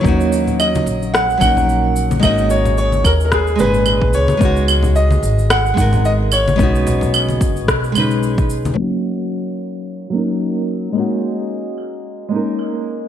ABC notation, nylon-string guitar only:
X:1
M:4/4
L:1/8
Q:"Swing 16ths" 1/4=110
K:D#phr
V:1 name="Nylon-string guitar"
[F,A,CDF]4- [F,A,CDF] [F,A,CDA]3 | [G,A,CDF]4- [G,A,CDF] [A,,G,CDG]3 | [G,B,DEF]4- [G,B,DEF] [G,B,DEA]3 | [G,B,CDF]4- [G,B,CDF] [G,B,CDB]3 |
[F,A,CDF]4- [F,A,CDF] [F,A,CDA]3 | [G,A,CDF]4- [G,A,CDF] [G,A,CDA]3 |]